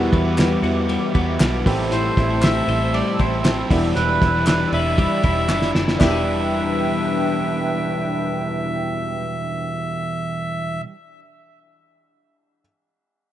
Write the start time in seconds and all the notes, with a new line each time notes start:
Already playing: E2 B2 E3 G3 B3 E4 F#4 B4 E5 F#5 D6
0.12 E2 B3, kick, ride
0.25 E3 G3 B3 F#4
0.38 G3, snare, clap, ride
0.62 E2 E3 G3 B3 F#4, ride
0.89 G3, ride
1.14 E2 E3 G3 B3 F#4, kick, ride
1.39 B1 E3 G3 B3 F#4, snare, clap, ride
1.65 A1 A2 E3 G3 A3 C4 E4 G4 C5 A5 E6, kick, open hi-hat, ride
1.92 A2 C5, hi-hat pedal, ride
2.17 A1 E4, kick, snare, ride
2.29 G3 C4 E4
2.42 C4 E5, snare, clap, ride
2.67 A1 E3 G3 C4 E4 C5, ride
2.94 G3 D5, ride
3.18 A1 E3 G3 C4 E4 C5, kick, ride
3.44 E3 G3 C4 E4, snare, clap, ride
3.69 E1 E2 B2 E3 G3 B3 D4 E4 G4 D5 B5, kick, open hi-hat, ride
3.96 E1 E3 B4, hi-hat pedal, ride
4.22 E1 E4, kick, snare, ride
4.34 E3 G3 D4 E4
4.47 D4 B4, snare, clap, ride
4.72 E1 E3 G3 D4 E4 B4 E5, ride
4.98 G3, kick, ride
5.23 E1 E3 G3 D4 E4, kick, ride
5.48 F#1 E3 G3 D4 E4, snare, clap
5.62 snare
5.75 F#1 E4, snare
5.88 snare
5.93 E2 E3
5.99 E1 B2 G3 D4 E4 G4 B4 E5 G5, kick, snare, clap, splash
6.03 E3 G3 D4 E4
6.10 D4 B4
6.15 E4